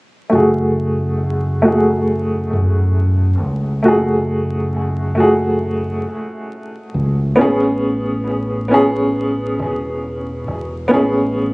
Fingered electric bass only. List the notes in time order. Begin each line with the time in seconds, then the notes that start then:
0.32 F#1
2.53 F#2
3.41 C#2
3.85 F#1
6.94 C#2
7.39 A1
9.59 E1
10.47 E1
10.91 A1